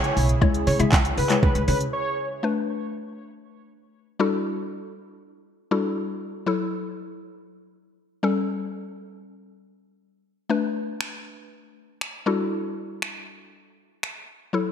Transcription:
Already playing: C#3 E4 G#4 C#5
0.04 closed hi-hat
0.17 B1, open hi-hat
0.29 closed hi-hat
0.41 C#2 G#3 E4 C#5, kick
0.54 closed hi-hat
0.67 C#3 C#5, open hi-hat
0.79 C#3 G#3 E4 E5, closed hi-hat
0.92 C#2, kick, snare, clap
1.05 closed hi-hat
1.17 C#3 B4, open hi-hat
1.30 G#3 E4 C#5, clap, closed hi-hat
1.43 C#2 B4, kick
1.55 C#2, closed hi-hat
1.68 C#3 B4, open hi-hat
1.81 closed hi-hat
1.93 C#5
2.43 A3 D4 B4
4.19 G3 D4 E4 F#4 A4
5.71 G3 D4 E4 F#4 A4
6.46 F#3 E4 A4
8.23 G3 C#4 A4
10.49 A3 D4 B4
11.01 finger snap
12.01 finger snap
12.26 G3 D4 E4 F#4 A4
13.02 finger snap
14.03 finger snap
14.53 F#3 E4 A4

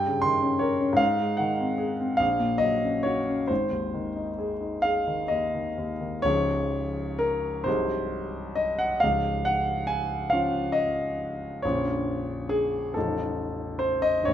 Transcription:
Already playing: G2 G5
0.06 C#3
0.22 D#3 C6
0.42 C#4
0.59 A#4 C#5
0.80 C#4
0.93 G#2 F5
1.19 G#3
1.37 D#3 F#5
1.60 C4
1.78 G#4
2.00 C4
2.17 A#1 F5
2.40 A#2
2.58 F#3 D#5
2.85 C#4
3.03 F#4 C#5
3.29 C#4
3.48 G#1 C5
3.71 D#2
3.94 D#3
4.16 D#4
4.38 G#4
4.61 D#4
4.82 G#4 F5
5.07 D#3
5.28 D#2 D#5
5.54 D#3
5.78 D#2
6.01 D#3
6.22 C#1 C#2 F3 C#4 G#4 C#5
7.19 A#4
7.64 C1 C2 F#3 D#4 G#4 C5
8.55 D#5
8.79 F#5
9.00 C#1 C#2 F5
9.45 F#5
9.87 G#5
10.30 F3 C#4 F4 F5
10.72 D#5
11.62 A#0 A#1 F3 C#4 C#5
11.67 F4
12.49 G#4
12.94 A0 A1 F3 D#4 F4 A4
13.79 C5
14.02 D#5
14.22 A#0 C#5
14.27 A#1

